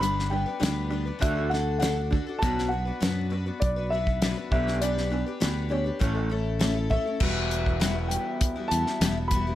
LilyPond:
<<
  \new Staff \with { instrumentName = "Grand piano" } { \time 4/4 \key e \dorian \tempo 4 = 100 b''8 g''4. e''8 fis''8 fis''8 r8 | a''8 fis''4. d''8 e''4 e''8 | d''4. cis''4. r8 e''8~ | e''4. g''4 a''4 b''8 | }
  \new Staff \with { instrumentName = "Twelve-string acoustic guitar" } { \time 4/4 \key e \dorian <g b d' b'>8 <g b d' b'>16 <b d' b'>16 <g b d' b'>8 <g b d' b'>16 <b d' b'>16 <d d' fis' a'>16 <d' fis' a'>16 <d d' fis' a'>8 <d d' fis' a'>16 <d' fis' a'>16 <d d' fis' a'>16 <d' fis' a'>16 | <b, fis b d' fis' b'>8 <b d' fis' b'>16 <b d' fis' b'>16 <b, fis b d' fis' b'>8 <b d' fis' b'>16 <b d' fis' b'>8 <b d' fis' b'>16 <b d' fis' b'>8 <b, fis b d' fis' b'>16 <b d' fis' b'>16 <b d' g' b'>16 <d' g' b'>16 | <b d' g' b'>8 <b d' g' b'>16 <d' g' b'>16 <b d' g' b'>8 <b d' g' b'>16 <d' g' b'>16 <a, a cis' e' a'>16 <cis' e' a'>16 <a cis' e' a'>8 <a, a cis' e' a'>16 <cis' e' a'>16 <a cis' e' a'>16 <cis' e' a'>16 | <e, e g b e' fis'>4 <e, e g b e' fis'>16 <g b e' fis'>16 <g b e'>8. <g b e' fis'>16 <g b e' fis'>8 <e, e g b e' fis'>16 <g b e' fis'>16 <g b e' fis'>16 <g b e' fis'>16 | }
  \new Staff \with { instrumentName = "Clean electric guitar" } { \clef bass \time 4/4 \key e \dorian <g d'>8 <g d'>8 <g d'>8 <g d'>8 <d d' fis'>8 <d d'>8 <d d'>8 <d d'>8 | <b, fis b>8 <b, fis>8 <b, fis>8 <b, fis>8 <b, fis>8 <b, fis>8 <b, fis>8 <b d' g'>8 | <b d'>8 <b d'>8 <b d'>8 <b d'>8 <a, a cis'>8 <a, a>8 <a, a>8 <a, a>8 | <e, e g b e' fis'>1 | }
  \new Staff \with { instrumentName = "Fingered electric bass" } { \clef bass \time 4/4 \key e \dorian g,,4 d,4 d,2 | b,,4 fis,4 b,,4. b,,8~ | b,,4 d,4 a,,2 | e,,2 r8 e,16 r16 e,,4 | }
  \new DrumStaff \with { instrumentName = "Drums" } \drummode { \time 4/4 hh16 sn8. <hh sn>4 <hh bd>8 sn8 <hh sn>8 bd8 | <hh bd>16 sn8. <hh sn>4 <hh bd>8. bd16 <hh sn>8 bd16 sn16 | hh16 sn8. <hh sn>4 <hh bd>4 <hh sn>8 bd8 | <cymc bd>8 hh16 bd16 <hh sn>8 hh8 <hh bd>8 hh16 sn16 <hh sn>8 <hh bd>8 | }
>>